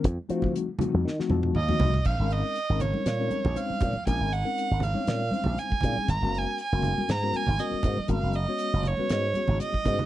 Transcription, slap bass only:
X:1
M:4/4
L:1/16
Q:"Swing 16ths" 1/4=119
K:Fm
V:1 name="Slap bass" clef=bass
F,, z F,2 z3 F,, E, z F,,2 E,,2 C,,2 | [K:Bbm] B,,, A,,,2 z2 A,,,2 z B,,2 z B,,, z2 B,, z | B,,, A,,,2 z2 A,,,2 z B,,2 z B,,, z2 B,, z | A,,, G,,,2 z2 G,,,2 z A,,2 z A,,, z2 A,, z |
A,,, G,,,2 z2 G,,,2 z A,,2 z A,,, z2 A,, z |]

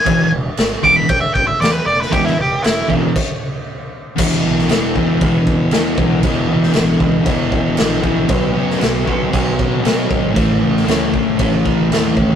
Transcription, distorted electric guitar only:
X:1
M:4/4
L:1/8
Q:1/4=116
K:Emix
V:1 name="Distorted electric guitar" clef=bass
[E,,B,,E,] z2 [E,,B,,E,] z4 | [E,,B,,E,] z2 [E,,B,,E,] z4 | [K:Bmix] [E,,B,,E,] [B,,E,] [E,,B,,E,] [B,,E,] [E,,B,,E,]2 [E,,B,,E,] [B,,E,] | [E,,B,,E,] [B,,E,] [E,,B,,E,] [B,,E,] [E,,B,,E,]2 [E,,B,,E,] [B,,E,] |
[B,,F,B,] [F,B,] [B,,F,B,] [F,B,] [B,,F,B,]2 [B,,F,B,] [F,B,] | [A,,E,A,] [E,A,] [A,,E,A,] [E,A,] [A,,E,A,]2 [A,,E,A,] [E,A,] |]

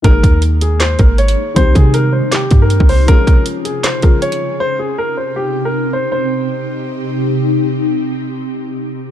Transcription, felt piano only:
X:1
M:4/4
L:1/8
Q:1/4=158
K:Cphr
V:1 name="Felt piano"
[E,A,B,EA]8 | [E,G,CEG]8 | [F,A,DFA]4- [F,A,DFA] [F,A,DFA]3 | z8 |
z8 | z8 |]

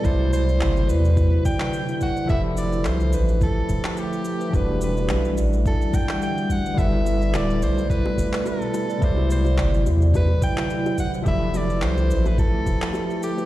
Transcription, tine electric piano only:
X:1
M:4/4
L:1/8
Q:"Swing 16ths" 1/4=107
K:Clyd
V:1 name="Tine electric piano"
[C,F,Ed]6- [C,F,Ed] z | [=F,GAeb]6- [F,GAeb] z | [E,G,DF]6- [E,G,DF] z | [G,EAB]6- [G,EAB] z |
[C,F,Ed]6- [C,F,Ed] z | [=F,GAeb]6- [F,GAeb] z |]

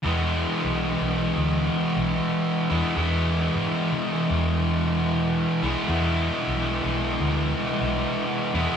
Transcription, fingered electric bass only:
X:1
M:4/4
L:1/16
Q:"Swing" 1/4=82
K:Emix
V:1 name="Fingered electric bass" clef=bass
E,,2 z B,,,2 B,,,2 D,,2 z B,,,2 z2 E,, z | E,,3 G,, z E, z E,,6- E,, B,,, z | E,,2 z B,,,2 B,,,2 D,,2 z B,,,2 z2 E,, z |]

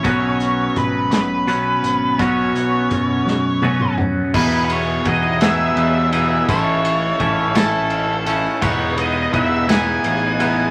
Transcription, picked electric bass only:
X:1
M:6/8
L:1/8
Q:3/8=56
K:E
V:1 name="Picked electric bass" clef=bass
B,,,2 G,,, B,,,2 G,,, | B,,, B,,, F,, F,,3 | E,,2 E,,2 E,,2 | A,,,2 A,,,4 |
E,,,2 E,,,2 A,,,2 |]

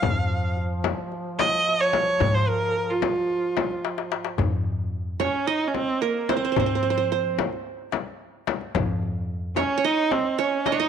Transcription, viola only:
X:1
M:4/4
L:1/16
Q:1/4=110
K:none
V:1 name="Viola"
f4 z6 _e3 _d3- | _d c _B3 F8- F z2 | z6 _D2 _E3/2 D/2 C2 _B,2 C2- | C6 z8 z2 |
z6 _D2 _E2 C2 D2 E2 |]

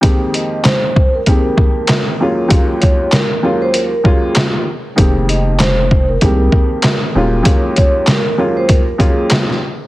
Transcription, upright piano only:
X:1
M:4/4
L:1/8
Q:"Swing 16ths" 1/4=97
K:Fm
V:1 name="Upright piano"
[F,,E,A,B,CG]4 [F,,E,A,B,CG]3 [E,,_G,A,B,DF] | [E,,_G,A,B,DF]2 z [E,,G,A,B,DF] z [E,,G,A,B,DF]2 z | [F,,E,A,B,CG]4 [F,,E,A,B,CG]3 [E,,_G,A,B,DF] | [E,,_G,A,B,DF]2 z [E,,G,A,B,DF] z [E,,G,A,B,DF]2 z |]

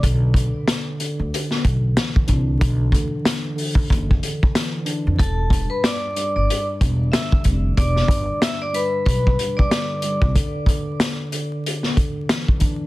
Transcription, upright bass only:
X:1
M:4/4
L:1/16
Q:"Swing 16ths" 1/4=93
K:Em
V:1 name="Upright bass" clef=bass
B,,,3 z4 D,, z2 B,,,2 z2 C,,2 | B,,,2 D,, z4 z F,,,2 z4 z =F,, | E,,,3 z4 G,,, z2 E,,,2 z2 =F,,,2 | E,,,2 G,,, z4 z B,,,2 z4 z C,, |
z16 |]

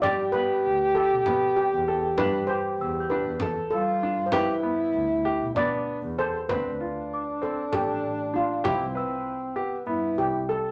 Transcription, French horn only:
X:1
M:7/8
L:1/8
Q:1/4=98
K:Gmix
V:1 name="French horn"
G6- G- | G4 z F2 | E4 D2 z | D6- D |
C3 B, E2 z |]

